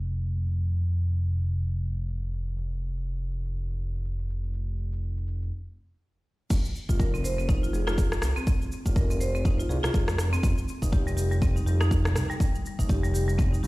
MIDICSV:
0, 0, Header, 1, 4, 480
1, 0, Start_track
1, 0, Tempo, 491803
1, 585, Time_signature, 4, 2, 24, 8
1, 13344, End_track
2, 0, Start_track
2, 0, Title_t, "Marimba"
2, 0, Program_c, 0, 12
2, 6725, Note_on_c, 0, 65, 77
2, 6815, Note_off_c, 0, 65, 0
2, 6826, Note_on_c, 0, 70, 81
2, 6957, Note_off_c, 0, 70, 0
2, 6967, Note_on_c, 0, 60, 78
2, 7020, Note_off_c, 0, 60, 0
2, 7069, Note_on_c, 0, 72, 75
2, 7192, Note_off_c, 0, 72, 0
2, 7206, Note_on_c, 0, 60, 77
2, 7296, Note_off_c, 0, 60, 0
2, 7307, Note_on_c, 0, 63, 86
2, 7431, Note_off_c, 0, 63, 0
2, 7449, Note_on_c, 0, 65, 77
2, 7501, Note_off_c, 0, 65, 0
2, 7547, Note_on_c, 0, 68, 75
2, 7671, Note_off_c, 0, 68, 0
2, 7682, Note_on_c, 0, 65, 104
2, 7774, Note_off_c, 0, 65, 0
2, 8163, Note_on_c, 0, 60, 97
2, 8254, Note_off_c, 0, 60, 0
2, 8644, Note_on_c, 0, 65, 78
2, 8735, Note_off_c, 0, 65, 0
2, 8746, Note_on_c, 0, 70, 84
2, 8877, Note_off_c, 0, 70, 0
2, 8884, Note_on_c, 0, 60, 77
2, 8938, Note_off_c, 0, 60, 0
2, 8984, Note_on_c, 0, 72, 75
2, 9109, Note_off_c, 0, 72, 0
2, 9123, Note_on_c, 0, 60, 80
2, 9215, Note_off_c, 0, 60, 0
2, 9222, Note_on_c, 0, 63, 83
2, 9348, Note_off_c, 0, 63, 0
2, 9364, Note_on_c, 0, 65, 81
2, 9418, Note_off_c, 0, 65, 0
2, 9461, Note_on_c, 0, 68, 74
2, 9588, Note_off_c, 0, 68, 0
2, 9597, Note_on_c, 0, 65, 103
2, 9691, Note_off_c, 0, 65, 0
2, 10078, Note_on_c, 0, 60, 104
2, 10172, Note_off_c, 0, 60, 0
2, 10562, Note_on_c, 0, 63, 77
2, 10654, Note_off_c, 0, 63, 0
2, 10661, Note_on_c, 0, 67, 84
2, 10795, Note_off_c, 0, 67, 0
2, 10803, Note_on_c, 0, 55, 79
2, 10858, Note_off_c, 0, 55, 0
2, 10900, Note_on_c, 0, 67, 77
2, 11028, Note_off_c, 0, 67, 0
2, 11044, Note_on_c, 0, 55, 78
2, 11135, Note_off_c, 0, 55, 0
2, 11147, Note_on_c, 0, 60, 84
2, 11271, Note_off_c, 0, 60, 0
2, 11285, Note_on_c, 0, 63, 78
2, 11339, Note_off_c, 0, 63, 0
2, 11383, Note_on_c, 0, 67, 75
2, 11509, Note_off_c, 0, 67, 0
2, 11522, Note_on_c, 0, 63, 101
2, 11614, Note_off_c, 0, 63, 0
2, 12001, Note_on_c, 0, 55, 102
2, 12094, Note_off_c, 0, 55, 0
2, 12481, Note_on_c, 0, 63, 79
2, 12574, Note_off_c, 0, 63, 0
2, 12582, Note_on_c, 0, 67, 84
2, 12716, Note_off_c, 0, 67, 0
2, 12723, Note_on_c, 0, 55, 80
2, 12778, Note_off_c, 0, 55, 0
2, 12823, Note_on_c, 0, 67, 76
2, 12949, Note_off_c, 0, 67, 0
2, 12960, Note_on_c, 0, 55, 77
2, 13053, Note_off_c, 0, 55, 0
2, 13060, Note_on_c, 0, 60, 85
2, 13187, Note_off_c, 0, 60, 0
2, 13199, Note_on_c, 0, 63, 76
2, 13256, Note_off_c, 0, 63, 0
2, 13304, Note_on_c, 0, 67, 73
2, 13344, Note_off_c, 0, 67, 0
2, 13344, End_track
3, 0, Start_track
3, 0, Title_t, "Analog synth bass"
3, 0, Program_c, 1, 38
3, 0, Note_on_c, 1, 29, 88
3, 2485, Note_off_c, 1, 29, 0
3, 2504, Note_on_c, 1, 29, 86
3, 5385, Note_off_c, 1, 29, 0
3, 6348, Note_on_c, 1, 29, 100
3, 6431, Note_off_c, 1, 29, 0
3, 6726, Note_on_c, 1, 29, 91
3, 7482, Note_off_c, 1, 29, 0
3, 7543, Note_on_c, 1, 29, 106
3, 8022, Note_on_c, 1, 36, 99
3, 8037, Note_off_c, 1, 29, 0
3, 8108, Note_off_c, 1, 36, 0
3, 8646, Note_on_c, 1, 29, 90
3, 9402, Note_off_c, 1, 29, 0
3, 9461, Note_on_c, 1, 36, 101
3, 9547, Note_off_c, 1, 36, 0
3, 9602, Note_on_c, 1, 36, 83
3, 9664, Note_off_c, 1, 36, 0
3, 9703, Note_on_c, 1, 29, 82
3, 10120, Note_off_c, 1, 29, 0
3, 10183, Note_on_c, 1, 29, 101
3, 10268, Note_off_c, 1, 29, 0
3, 10559, Note_on_c, 1, 29, 92
3, 11319, Note_off_c, 1, 29, 0
3, 11383, Note_on_c, 1, 29, 106
3, 11861, Note_on_c, 1, 36, 99
3, 11875, Note_off_c, 1, 29, 0
3, 11947, Note_off_c, 1, 36, 0
3, 12482, Note_on_c, 1, 29, 90
3, 13240, Note_off_c, 1, 29, 0
3, 13305, Note_on_c, 1, 36, 100
3, 13344, Note_off_c, 1, 36, 0
3, 13344, End_track
4, 0, Start_track
4, 0, Title_t, "Drums"
4, 10, Note_on_c, 9, 82, 47
4, 108, Note_off_c, 9, 82, 0
4, 111, Note_on_c, 9, 82, 83
4, 208, Note_off_c, 9, 82, 0
4, 250, Note_on_c, 9, 82, 49
4, 348, Note_off_c, 9, 82, 0
4, 349, Note_on_c, 9, 82, 86
4, 446, Note_off_c, 9, 82, 0
4, 489, Note_on_c, 9, 82, 47
4, 587, Note_off_c, 9, 82, 0
4, 588, Note_on_c, 9, 82, 87
4, 686, Note_off_c, 9, 82, 0
4, 731, Note_on_c, 9, 82, 49
4, 828, Note_off_c, 9, 82, 0
4, 831, Note_on_c, 9, 82, 49
4, 928, Note_off_c, 9, 82, 0
4, 969, Note_on_c, 9, 82, 90
4, 1067, Note_off_c, 9, 82, 0
4, 1071, Note_on_c, 9, 82, 51
4, 1168, Note_off_c, 9, 82, 0
4, 1212, Note_on_c, 9, 82, 52
4, 1310, Note_off_c, 9, 82, 0
4, 1314, Note_on_c, 9, 82, 87
4, 1412, Note_off_c, 9, 82, 0
4, 1452, Note_on_c, 9, 82, 49
4, 1549, Note_off_c, 9, 82, 0
4, 1554, Note_on_c, 9, 82, 51
4, 1652, Note_off_c, 9, 82, 0
4, 1692, Note_on_c, 9, 82, 49
4, 1790, Note_off_c, 9, 82, 0
4, 1794, Note_on_c, 9, 82, 50
4, 1891, Note_off_c, 9, 82, 0
4, 1933, Note_on_c, 9, 82, 51
4, 2030, Note_off_c, 9, 82, 0
4, 2032, Note_on_c, 9, 82, 91
4, 2129, Note_off_c, 9, 82, 0
4, 2173, Note_on_c, 9, 82, 51
4, 2271, Note_off_c, 9, 82, 0
4, 2273, Note_on_c, 9, 82, 88
4, 2371, Note_off_c, 9, 82, 0
4, 2412, Note_on_c, 9, 82, 51
4, 2509, Note_off_c, 9, 82, 0
4, 2511, Note_on_c, 9, 82, 90
4, 2608, Note_off_c, 9, 82, 0
4, 2652, Note_on_c, 9, 82, 50
4, 2750, Note_off_c, 9, 82, 0
4, 2754, Note_on_c, 9, 82, 51
4, 2851, Note_off_c, 9, 82, 0
4, 2894, Note_on_c, 9, 82, 91
4, 2991, Note_off_c, 9, 82, 0
4, 2992, Note_on_c, 9, 82, 52
4, 3090, Note_off_c, 9, 82, 0
4, 3133, Note_on_c, 9, 82, 54
4, 3230, Note_off_c, 9, 82, 0
4, 3231, Note_on_c, 9, 82, 90
4, 3329, Note_off_c, 9, 82, 0
4, 3370, Note_on_c, 9, 82, 50
4, 3468, Note_off_c, 9, 82, 0
4, 3474, Note_on_c, 9, 82, 51
4, 3572, Note_off_c, 9, 82, 0
4, 3612, Note_on_c, 9, 82, 53
4, 3710, Note_off_c, 9, 82, 0
4, 3712, Note_on_c, 9, 82, 51
4, 3809, Note_off_c, 9, 82, 0
4, 3848, Note_on_c, 9, 82, 53
4, 3946, Note_off_c, 9, 82, 0
4, 3949, Note_on_c, 9, 82, 93
4, 4046, Note_off_c, 9, 82, 0
4, 4089, Note_on_c, 9, 82, 51
4, 4186, Note_off_c, 9, 82, 0
4, 4191, Note_on_c, 9, 82, 89
4, 4289, Note_off_c, 9, 82, 0
4, 4328, Note_on_c, 9, 82, 52
4, 4425, Note_off_c, 9, 82, 0
4, 4429, Note_on_c, 9, 82, 88
4, 4526, Note_off_c, 9, 82, 0
4, 4569, Note_on_c, 9, 82, 49
4, 4667, Note_off_c, 9, 82, 0
4, 4668, Note_on_c, 9, 82, 51
4, 4765, Note_off_c, 9, 82, 0
4, 4806, Note_on_c, 9, 82, 91
4, 4904, Note_off_c, 9, 82, 0
4, 4909, Note_on_c, 9, 82, 53
4, 5007, Note_off_c, 9, 82, 0
4, 5048, Note_on_c, 9, 82, 53
4, 5146, Note_off_c, 9, 82, 0
4, 5149, Note_on_c, 9, 82, 91
4, 5246, Note_off_c, 9, 82, 0
4, 5290, Note_on_c, 9, 82, 50
4, 5388, Note_off_c, 9, 82, 0
4, 6346, Note_on_c, 9, 49, 105
4, 6348, Note_on_c, 9, 36, 120
4, 6352, Note_on_c, 9, 82, 93
4, 6443, Note_off_c, 9, 49, 0
4, 6445, Note_off_c, 9, 36, 0
4, 6450, Note_off_c, 9, 82, 0
4, 6491, Note_on_c, 9, 82, 52
4, 6588, Note_off_c, 9, 82, 0
4, 6593, Note_on_c, 9, 82, 51
4, 6691, Note_off_c, 9, 82, 0
4, 6726, Note_on_c, 9, 36, 63
4, 6731, Note_on_c, 9, 82, 91
4, 6824, Note_off_c, 9, 36, 0
4, 6827, Note_on_c, 9, 36, 117
4, 6828, Note_off_c, 9, 82, 0
4, 6834, Note_on_c, 9, 82, 55
4, 6925, Note_off_c, 9, 36, 0
4, 6932, Note_off_c, 9, 82, 0
4, 6974, Note_on_c, 9, 82, 54
4, 7072, Note_off_c, 9, 82, 0
4, 7075, Note_on_c, 9, 82, 92
4, 7172, Note_off_c, 9, 82, 0
4, 7216, Note_on_c, 9, 82, 52
4, 7308, Note_on_c, 9, 36, 119
4, 7314, Note_off_c, 9, 82, 0
4, 7316, Note_on_c, 9, 82, 53
4, 7406, Note_off_c, 9, 36, 0
4, 7414, Note_off_c, 9, 82, 0
4, 7452, Note_on_c, 9, 82, 53
4, 7550, Note_off_c, 9, 82, 0
4, 7554, Note_on_c, 9, 82, 53
4, 7651, Note_off_c, 9, 82, 0
4, 7685, Note_on_c, 9, 37, 96
4, 7691, Note_on_c, 9, 82, 51
4, 7783, Note_off_c, 9, 37, 0
4, 7787, Note_on_c, 9, 36, 118
4, 7789, Note_off_c, 9, 82, 0
4, 7791, Note_on_c, 9, 82, 91
4, 7884, Note_off_c, 9, 36, 0
4, 7889, Note_off_c, 9, 82, 0
4, 7924, Note_on_c, 9, 37, 95
4, 7930, Note_on_c, 9, 82, 54
4, 8021, Note_off_c, 9, 37, 0
4, 8021, Note_on_c, 9, 37, 99
4, 8028, Note_off_c, 9, 82, 0
4, 8028, Note_on_c, 9, 82, 90
4, 8119, Note_off_c, 9, 37, 0
4, 8125, Note_off_c, 9, 82, 0
4, 8166, Note_on_c, 9, 82, 52
4, 8264, Note_off_c, 9, 82, 0
4, 8266, Note_on_c, 9, 36, 120
4, 8268, Note_on_c, 9, 82, 96
4, 8364, Note_off_c, 9, 36, 0
4, 8366, Note_off_c, 9, 82, 0
4, 8410, Note_on_c, 9, 82, 53
4, 8507, Note_off_c, 9, 82, 0
4, 8508, Note_on_c, 9, 82, 54
4, 8606, Note_off_c, 9, 82, 0
4, 8644, Note_on_c, 9, 36, 64
4, 8648, Note_on_c, 9, 82, 97
4, 8742, Note_off_c, 9, 36, 0
4, 8744, Note_on_c, 9, 36, 123
4, 8746, Note_off_c, 9, 82, 0
4, 8750, Note_on_c, 9, 82, 57
4, 8842, Note_off_c, 9, 36, 0
4, 8848, Note_off_c, 9, 82, 0
4, 8887, Note_on_c, 9, 82, 57
4, 8985, Note_off_c, 9, 82, 0
4, 8988, Note_on_c, 9, 82, 93
4, 9085, Note_off_c, 9, 82, 0
4, 9128, Note_on_c, 9, 82, 53
4, 9224, Note_on_c, 9, 36, 123
4, 9226, Note_off_c, 9, 82, 0
4, 9228, Note_on_c, 9, 82, 56
4, 9321, Note_off_c, 9, 36, 0
4, 9326, Note_off_c, 9, 82, 0
4, 9367, Note_on_c, 9, 82, 55
4, 9465, Note_off_c, 9, 82, 0
4, 9471, Note_on_c, 9, 82, 56
4, 9568, Note_off_c, 9, 82, 0
4, 9604, Note_on_c, 9, 37, 99
4, 9610, Note_on_c, 9, 82, 56
4, 9701, Note_off_c, 9, 37, 0
4, 9703, Note_on_c, 9, 36, 125
4, 9707, Note_off_c, 9, 82, 0
4, 9708, Note_on_c, 9, 82, 96
4, 9800, Note_off_c, 9, 36, 0
4, 9805, Note_off_c, 9, 82, 0
4, 9837, Note_on_c, 9, 37, 96
4, 9843, Note_on_c, 9, 82, 55
4, 9935, Note_off_c, 9, 37, 0
4, 9939, Note_on_c, 9, 37, 96
4, 9941, Note_off_c, 9, 82, 0
4, 9946, Note_on_c, 9, 82, 98
4, 10037, Note_off_c, 9, 37, 0
4, 10043, Note_off_c, 9, 82, 0
4, 10086, Note_on_c, 9, 82, 53
4, 10183, Note_off_c, 9, 82, 0
4, 10183, Note_on_c, 9, 36, 127
4, 10187, Note_on_c, 9, 82, 96
4, 10280, Note_off_c, 9, 36, 0
4, 10285, Note_off_c, 9, 82, 0
4, 10325, Note_on_c, 9, 82, 57
4, 10423, Note_off_c, 9, 82, 0
4, 10427, Note_on_c, 9, 82, 55
4, 10525, Note_off_c, 9, 82, 0
4, 10561, Note_on_c, 9, 36, 65
4, 10567, Note_on_c, 9, 82, 100
4, 10659, Note_off_c, 9, 36, 0
4, 10663, Note_on_c, 9, 36, 123
4, 10665, Note_off_c, 9, 82, 0
4, 10669, Note_on_c, 9, 82, 57
4, 10761, Note_off_c, 9, 36, 0
4, 10767, Note_off_c, 9, 82, 0
4, 10808, Note_on_c, 9, 82, 57
4, 10906, Note_off_c, 9, 82, 0
4, 10907, Note_on_c, 9, 82, 98
4, 11005, Note_off_c, 9, 82, 0
4, 11047, Note_on_c, 9, 82, 55
4, 11143, Note_on_c, 9, 36, 127
4, 11144, Note_off_c, 9, 82, 0
4, 11150, Note_on_c, 9, 82, 58
4, 11241, Note_off_c, 9, 36, 0
4, 11248, Note_off_c, 9, 82, 0
4, 11287, Note_on_c, 9, 82, 55
4, 11385, Note_off_c, 9, 82, 0
4, 11391, Note_on_c, 9, 82, 54
4, 11489, Note_off_c, 9, 82, 0
4, 11524, Note_on_c, 9, 37, 93
4, 11530, Note_on_c, 9, 82, 57
4, 11621, Note_off_c, 9, 37, 0
4, 11624, Note_on_c, 9, 36, 126
4, 11627, Note_off_c, 9, 82, 0
4, 11631, Note_on_c, 9, 82, 101
4, 11721, Note_off_c, 9, 36, 0
4, 11729, Note_off_c, 9, 82, 0
4, 11764, Note_on_c, 9, 37, 97
4, 11770, Note_on_c, 9, 82, 56
4, 11862, Note_off_c, 9, 37, 0
4, 11864, Note_on_c, 9, 37, 97
4, 11868, Note_off_c, 9, 82, 0
4, 11870, Note_on_c, 9, 82, 96
4, 11962, Note_off_c, 9, 37, 0
4, 11968, Note_off_c, 9, 82, 0
4, 12011, Note_on_c, 9, 82, 55
4, 12104, Note_on_c, 9, 36, 127
4, 12109, Note_off_c, 9, 82, 0
4, 12111, Note_on_c, 9, 82, 99
4, 12202, Note_off_c, 9, 36, 0
4, 12209, Note_off_c, 9, 82, 0
4, 12249, Note_on_c, 9, 82, 53
4, 12347, Note_off_c, 9, 82, 0
4, 12352, Note_on_c, 9, 82, 52
4, 12450, Note_off_c, 9, 82, 0
4, 12483, Note_on_c, 9, 36, 63
4, 12490, Note_on_c, 9, 82, 98
4, 12580, Note_off_c, 9, 36, 0
4, 12585, Note_on_c, 9, 36, 126
4, 12588, Note_off_c, 9, 82, 0
4, 12589, Note_on_c, 9, 82, 55
4, 12682, Note_off_c, 9, 36, 0
4, 12687, Note_off_c, 9, 82, 0
4, 12729, Note_on_c, 9, 82, 55
4, 12826, Note_off_c, 9, 82, 0
4, 12832, Note_on_c, 9, 82, 96
4, 12930, Note_off_c, 9, 82, 0
4, 12971, Note_on_c, 9, 82, 54
4, 13065, Note_on_c, 9, 36, 127
4, 13068, Note_off_c, 9, 82, 0
4, 13073, Note_on_c, 9, 82, 56
4, 13163, Note_off_c, 9, 36, 0
4, 13170, Note_off_c, 9, 82, 0
4, 13213, Note_on_c, 9, 82, 55
4, 13310, Note_off_c, 9, 82, 0
4, 13312, Note_on_c, 9, 82, 54
4, 13344, Note_off_c, 9, 82, 0
4, 13344, End_track
0, 0, End_of_file